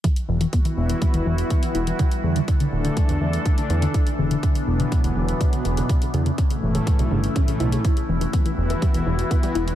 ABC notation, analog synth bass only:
X:1
M:4/4
L:1/16
Q:1/4=123
K:Edor
V:1 name="Analog synth bass" clef=bass
z2 E,,, z3 E,,, z2 E,,, E,,, z3 E,,, z | z2 E,, z3 D,,, z2 E,, E,, z3 E,, z | z2 E,,, z3 E,,, z2 E,,, E,,, z3 E,,, z | z2 E,, z3 E,,, z2 B,,, G,,, z3 B,,, z |
z2 E,,, z3 E,,, z2 E,,, E,,, z3 E,,, z |]